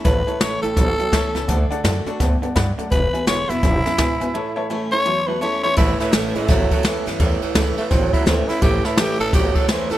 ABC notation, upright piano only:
X:1
M:4/4
L:1/8
Q:"Swing" 1/4=168
K:Amix
V:1 name="Upright piano"
[cea] [cea] [ca] [ceg] [cea] [ceg] [cea] [cea] | [dfa] [dfa] [da] [dfa] [dfa] [dfa] [dfb] [dfa] | [Be^g] [Beg] [Bg] [Bef] [Beg] [Beg] [Beg] [Beg] | [cea] [cea] [cea] [ceb] [cea] [cea] [cea] [ceb] |
z8 | z8 | z8 |]